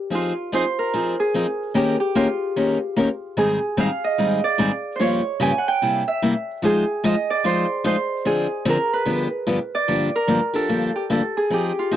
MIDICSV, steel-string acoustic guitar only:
0, 0, Header, 1, 2, 480
1, 0, Start_track
1, 0, Tempo, 406504
1, 136, Time_signature, 4, 2, 24, 8
1, 14128, End_track
2, 0, Start_track
2, 0, Title_t, "Steel-string acoustic guitar"
2, 0, Program_c, 0, 25
2, 121, Note_on_c, 0, 53, 69
2, 132, Note_on_c, 0, 60, 72
2, 136, Note_on_c, 0, 63, 71
2, 136, Note_on_c, 0, 68, 82
2, 376, Note_off_c, 0, 53, 0
2, 381, Note_off_c, 0, 60, 0
2, 383, Note_off_c, 0, 63, 0
2, 383, Note_off_c, 0, 68, 0
2, 618, Note_on_c, 0, 53, 89
2, 624, Note_on_c, 0, 63, 92
2, 626, Note_on_c, 0, 60, 99
2, 630, Note_on_c, 0, 68, 106
2, 748, Note_off_c, 0, 53, 0
2, 751, Note_off_c, 0, 63, 0
2, 752, Note_off_c, 0, 60, 0
2, 754, Note_off_c, 0, 68, 0
2, 1105, Note_on_c, 0, 53, 72
2, 1109, Note_on_c, 0, 60, 78
2, 1116, Note_on_c, 0, 63, 74
2, 1116, Note_on_c, 0, 68, 72
2, 1348, Note_off_c, 0, 53, 0
2, 1350, Note_off_c, 0, 60, 0
2, 1354, Note_off_c, 0, 63, 0
2, 1354, Note_off_c, 0, 68, 0
2, 1586, Note_on_c, 0, 53, 81
2, 1593, Note_on_c, 0, 60, 79
2, 1598, Note_on_c, 0, 63, 95
2, 1602, Note_on_c, 0, 68, 89
2, 1713, Note_off_c, 0, 53, 0
2, 1716, Note_off_c, 0, 60, 0
2, 1719, Note_off_c, 0, 63, 0
2, 1721, Note_off_c, 0, 68, 0
2, 2058, Note_on_c, 0, 51, 65
2, 2063, Note_on_c, 0, 61, 77
2, 2067, Note_on_c, 0, 58, 76
2, 2068, Note_on_c, 0, 67, 72
2, 2068, Note_on_c, 0, 70, 84
2, 2306, Note_off_c, 0, 51, 0
2, 2308, Note_off_c, 0, 61, 0
2, 2310, Note_off_c, 0, 58, 0
2, 2310, Note_off_c, 0, 67, 0
2, 2311, Note_off_c, 0, 70, 0
2, 2541, Note_on_c, 0, 51, 84
2, 2545, Note_on_c, 0, 58, 97
2, 2546, Note_on_c, 0, 61, 97
2, 2547, Note_on_c, 0, 67, 104
2, 2548, Note_on_c, 0, 70, 95
2, 2671, Note_off_c, 0, 51, 0
2, 2673, Note_off_c, 0, 58, 0
2, 2673, Note_off_c, 0, 61, 0
2, 2674, Note_off_c, 0, 67, 0
2, 2675, Note_off_c, 0, 70, 0
2, 3026, Note_on_c, 0, 51, 74
2, 3028, Note_on_c, 0, 58, 68
2, 3031, Note_on_c, 0, 61, 78
2, 3036, Note_on_c, 0, 70, 73
2, 3037, Note_on_c, 0, 67, 69
2, 3270, Note_off_c, 0, 51, 0
2, 3271, Note_off_c, 0, 58, 0
2, 3273, Note_off_c, 0, 61, 0
2, 3275, Note_off_c, 0, 70, 0
2, 3276, Note_off_c, 0, 67, 0
2, 3500, Note_on_c, 0, 51, 86
2, 3502, Note_on_c, 0, 58, 88
2, 3510, Note_on_c, 0, 61, 78
2, 3513, Note_on_c, 0, 67, 85
2, 3514, Note_on_c, 0, 70, 90
2, 3631, Note_off_c, 0, 51, 0
2, 3632, Note_off_c, 0, 58, 0
2, 3636, Note_off_c, 0, 61, 0
2, 3637, Note_off_c, 0, 67, 0
2, 3638, Note_off_c, 0, 70, 0
2, 3977, Note_on_c, 0, 44, 72
2, 3978, Note_on_c, 0, 51, 66
2, 3980, Note_on_c, 0, 60, 73
2, 3982, Note_on_c, 0, 55, 72
2, 3983, Note_on_c, 0, 63, 75
2, 3991, Note_on_c, 0, 68, 78
2, 4226, Note_off_c, 0, 44, 0
2, 4227, Note_off_c, 0, 51, 0
2, 4227, Note_off_c, 0, 60, 0
2, 4228, Note_off_c, 0, 55, 0
2, 4229, Note_off_c, 0, 63, 0
2, 4233, Note_off_c, 0, 68, 0
2, 4453, Note_on_c, 0, 44, 87
2, 4454, Note_on_c, 0, 51, 85
2, 4456, Note_on_c, 0, 60, 97
2, 4458, Note_on_c, 0, 55, 89
2, 4465, Note_on_c, 0, 63, 99
2, 4465, Note_on_c, 0, 68, 91
2, 4587, Note_off_c, 0, 44, 0
2, 4588, Note_off_c, 0, 51, 0
2, 4589, Note_off_c, 0, 60, 0
2, 4590, Note_off_c, 0, 55, 0
2, 4594, Note_off_c, 0, 63, 0
2, 4594, Note_off_c, 0, 68, 0
2, 4938, Note_on_c, 0, 44, 71
2, 4941, Note_on_c, 0, 55, 75
2, 4945, Note_on_c, 0, 51, 73
2, 4945, Note_on_c, 0, 60, 69
2, 4948, Note_on_c, 0, 68, 72
2, 4952, Note_on_c, 0, 63, 75
2, 5187, Note_off_c, 0, 44, 0
2, 5188, Note_off_c, 0, 55, 0
2, 5190, Note_off_c, 0, 51, 0
2, 5190, Note_off_c, 0, 60, 0
2, 5192, Note_off_c, 0, 68, 0
2, 5193, Note_off_c, 0, 63, 0
2, 5409, Note_on_c, 0, 44, 90
2, 5416, Note_on_c, 0, 51, 80
2, 5420, Note_on_c, 0, 55, 80
2, 5422, Note_on_c, 0, 60, 87
2, 5423, Note_on_c, 0, 63, 89
2, 5425, Note_on_c, 0, 68, 102
2, 5546, Note_off_c, 0, 44, 0
2, 5549, Note_off_c, 0, 51, 0
2, 5551, Note_off_c, 0, 55, 0
2, 5553, Note_off_c, 0, 60, 0
2, 5553, Note_off_c, 0, 63, 0
2, 5554, Note_off_c, 0, 68, 0
2, 5898, Note_on_c, 0, 43, 67
2, 5899, Note_on_c, 0, 49, 67
2, 5902, Note_on_c, 0, 53, 73
2, 5906, Note_on_c, 0, 58, 77
2, 5906, Note_on_c, 0, 67, 79
2, 5911, Note_on_c, 0, 65, 73
2, 6147, Note_off_c, 0, 43, 0
2, 6147, Note_off_c, 0, 49, 0
2, 6149, Note_off_c, 0, 53, 0
2, 6151, Note_off_c, 0, 58, 0
2, 6151, Note_off_c, 0, 67, 0
2, 6153, Note_off_c, 0, 65, 0
2, 6373, Note_on_c, 0, 43, 89
2, 6373, Note_on_c, 0, 49, 91
2, 6380, Note_on_c, 0, 53, 91
2, 6382, Note_on_c, 0, 58, 100
2, 6384, Note_on_c, 0, 65, 98
2, 6385, Note_on_c, 0, 67, 109
2, 6508, Note_off_c, 0, 43, 0
2, 6508, Note_off_c, 0, 49, 0
2, 6511, Note_off_c, 0, 53, 0
2, 6512, Note_off_c, 0, 58, 0
2, 6513, Note_off_c, 0, 65, 0
2, 6514, Note_off_c, 0, 67, 0
2, 6871, Note_on_c, 0, 48, 65
2, 6877, Note_on_c, 0, 55, 68
2, 6879, Note_on_c, 0, 58, 78
2, 6880, Note_on_c, 0, 64, 78
2, 6882, Note_on_c, 0, 67, 73
2, 7113, Note_off_c, 0, 48, 0
2, 7116, Note_off_c, 0, 55, 0
2, 7117, Note_off_c, 0, 58, 0
2, 7118, Note_off_c, 0, 64, 0
2, 7118, Note_off_c, 0, 67, 0
2, 7349, Note_on_c, 0, 48, 85
2, 7349, Note_on_c, 0, 55, 91
2, 7352, Note_on_c, 0, 58, 93
2, 7356, Note_on_c, 0, 64, 95
2, 7357, Note_on_c, 0, 67, 98
2, 7476, Note_off_c, 0, 48, 0
2, 7476, Note_off_c, 0, 55, 0
2, 7477, Note_off_c, 0, 58, 0
2, 7479, Note_off_c, 0, 64, 0
2, 7480, Note_off_c, 0, 67, 0
2, 7819, Note_on_c, 0, 53, 73
2, 7822, Note_on_c, 0, 56, 73
2, 7831, Note_on_c, 0, 63, 73
2, 7832, Note_on_c, 0, 72, 86
2, 7833, Note_on_c, 0, 65, 82
2, 8067, Note_off_c, 0, 53, 0
2, 8068, Note_off_c, 0, 56, 0
2, 8073, Note_off_c, 0, 63, 0
2, 8073, Note_off_c, 0, 65, 0
2, 8073, Note_off_c, 0, 72, 0
2, 8308, Note_on_c, 0, 53, 80
2, 8312, Note_on_c, 0, 56, 92
2, 8314, Note_on_c, 0, 63, 100
2, 8315, Note_on_c, 0, 65, 104
2, 8316, Note_on_c, 0, 72, 96
2, 8435, Note_off_c, 0, 53, 0
2, 8437, Note_off_c, 0, 56, 0
2, 8438, Note_off_c, 0, 63, 0
2, 8438, Note_off_c, 0, 65, 0
2, 8439, Note_off_c, 0, 72, 0
2, 8785, Note_on_c, 0, 56, 76
2, 8787, Note_on_c, 0, 53, 78
2, 8792, Note_on_c, 0, 63, 71
2, 8793, Note_on_c, 0, 65, 79
2, 8798, Note_on_c, 0, 72, 81
2, 9029, Note_off_c, 0, 56, 0
2, 9030, Note_off_c, 0, 53, 0
2, 9033, Note_off_c, 0, 63, 0
2, 9033, Note_off_c, 0, 65, 0
2, 9036, Note_off_c, 0, 72, 0
2, 9260, Note_on_c, 0, 53, 84
2, 9263, Note_on_c, 0, 63, 97
2, 9264, Note_on_c, 0, 56, 81
2, 9268, Note_on_c, 0, 65, 88
2, 9275, Note_on_c, 0, 72, 93
2, 9391, Note_off_c, 0, 53, 0
2, 9392, Note_off_c, 0, 63, 0
2, 9393, Note_off_c, 0, 56, 0
2, 9395, Note_off_c, 0, 65, 0
2, 9398, Note_off_c, 0, 72, 0
2, 9744, Note_on_c, 0, 50, 68
2, 9748, Note_on_c, 0, 60, 82
2, 9752, Note_on_c, 0, 53, 70
2, 9753, Note_on_c, 0, 62, 81
2, 9758, Note_on_c, 0, 68, 76
2, 9988, Note_off_c, 0, 50, 0
2, 9990, Note_off_c, 0, 60, 0
2, 9993, Note_off_c, 0, 53, 0
2, 9993, Note_off_c, 0, 62, 0
2, 9995, Note_off_c, 0, 68, 0
2, 10217, Note_on_c, 0, 50, 94
2, 10218, Note_on_c, 0, 60, 102
2, 10220, Note_on_c, 0, 53, 95
2, 10224, Note_on_c, 0, 62, 104
2, 10224, Note_on_c, 0, 68, 93
2, 10349, Note_off_c, 0, 50, 0
2, 10349, Note_off_c, 0, 60, 0
2, 10350, Note_off_c, 0, 53, 0
2, 10352, Note_off_c, 0, 62, 0
2, 10352, Note_off_c, 0, 68, 0
2, 10690, Note_on_c, 0, 43, 70
2, 10692, Note_on_c, 0, 50, 64
2, 10698, Note_on_c, 0, 53, 71
2, 10701, Note_on_c, 0, 67, 82
2, 10702, Note_on_c, 0, 62, 77
2, 10703, Note_on_c, 0, 59, 80
2, 10941, Note_off_c, 0, 43, 0
2, 10942, Note_off_c, 0, 50, 0
2, 10945, Note_off_c, 0, 53, 0
2, 10947, Note_off_c, 0, 62, 0
2, 10947, Note_off_c, 0, 67, 0
2, 10948, Note_off_c, 0, 59, 0
2, 11178, Note_on_c, 0, 43, 80
2, 11178, Note_on_c, 0, 50, 84
2, 11179, Note_on_c, 0, 53, 81
2, 11185, Note_on_c, 0, 59, 88
2, 11185, Note_on_c, 0, 67, 86
2, 11192, Note_on_c, 0, 62, 86
2, 11309, Note_off_c, 0, 43, 0
2, 11309, Note_off_c, 0, 50, 0
2, 11310, Note_off_c, 0, 53, 0
2, 11312, Note_off_c, 0, 59, 0
2, 11313, Note_off_c, 0, 67, 0
2, 11316, Note_off_c, 0, 62, 0
2, 11664, Note_on_c, 0, 43, 65
2, 11667, Note_on_c, 0, 50, 75
2, 11670, Note_on_c, 0, 53, 70
2, 11674, Note_on_c, 0, 58, 67
2, 11674, Note_on_c, 0, 62, 64
2, 11678, Note_on_c, 0, 67, 71
2, 11908, Note_off_c, 0, 43, 0
2, 11909, Note_off_c, 0, 50, 0
2, 11911, Note_off_c, 0, 53, 0
2, 11913, Note_off_c, 0, 58, 0
2, 11913, Note_off_c, 0, 62, 0
2, 11915, Note_off_c, 0, 67, 0
2, 12132, Note_on_c, 0, 43, 81
2, 12136, Note_on_c, 0, 50, 79
2, 12138, Note_on_c, 0, 53, 88
2, 12141, Note_on_c, 0, 58, 85
2, 12141, Note_on_c, 0, 62, 89
2, 12145, Note_on_c, 0, 67, 91
2, 12266, Note_off_c, 0, 43, 0
2, 12268, Note_off_c, 0, 50, 0
2, 12269, Note_off_c, 0, 53, 0
2, 12270, Note_off_c, 0, 58, 0
2, 12270, Note_off_c, 0, 62, 0
2, 12272, Note_off_c, 0, 67, 0
2, 12440, Note_on_c, 0, 67, 58
2, 12446, Note_on_c, 0, 62, 59
2, 12452, Note_on_c, 0, 58, 56
2, 12455, Note_on_c, 0, 53, 44
2, 12611, Note_off_c, 0, 53, 0
2, 12613, Note_off_c, 0, 67, 0
2, 12615, Note_off_c, 0, 58, 0
2, 12616, Note_off_c, 0, 62, 0
2, 12618, Note_on_c, 0, 43, 64
2, 12625, Note_on_c, 0, 53, 67
2, 12628, Note_on_c, 0, 50, 70
2, 12629, Note_on_c, 0, 58, 68
2, 12629, Note_on_c, 0, 62, 66
2, 12635, Note_on_c, 0, 67, 75
2, 12865, Note_off_c, 0, 43, 0
2, 12869, Note_off_c, 0, 53, 0
2, 12870, Note_off_c, 0, 50, 0
2, 12870, Note_off_c, 0, 58, 0
2, 12870, Note_off_c, 0, 62, 0
2, 12873, Note_off_c, 0, 67, 0
2, 13103, Note_on_c, 0, 43, 76
2, 13108, Note_on_c, 0, 50, 78
2, 13108, Note_on_c, 0, 53, 77
2, 13109, Note_on_c, 0, 58, 85
2, 13112, Note_on_c, 0, 62, 91
2, 13114, Note_on_c, 0, 67, 89
2, 13231, Note_off_c, 0, 43, 0
2, 13234, Note_off_c, 0, 50, 0
2, 13234, Note_off_c, 0, 53, 0
2, 13234, Note_off_c, 0, 58, 0
2, 13236, Note_off_c, 0, 62, 0
2, 13237, Note_off_c, 0, 67, 0
2, 13582, Note_on_c, 0, 53, 68
2, 13587, Note_on_c, 0, 60, 70
2, 13590, Note_on_c, 0, 63, 68
2, 13593, Note_on_c, 0, 68, 73
2, 13827, Note_off_c, 0, 53, 0
2, 13829, Note_off_c, 0, 60, 0
2, 13831, Note_off_c, 0, 63, 0
2, 13832, Note_off_c, 0, 68, 0
2, 14069, Note_on_c, 0, 53, 84
2, 14070, Note_on_c, 0, 60, 86
2, 14074, Note_on_c, 0, 63, 99
2, 14081, Note_on_c, 0, 68, 90
2, 14128, Note_off_c, 0, 53, 0
2, 14128, Note_off_c, 0, 60, 0
2, 14128, Note_off_c, 0, 63, 0
2, 14128, Note_off_c, 0, 68, 0
2, 14128, End_track
0, 0, End_of_file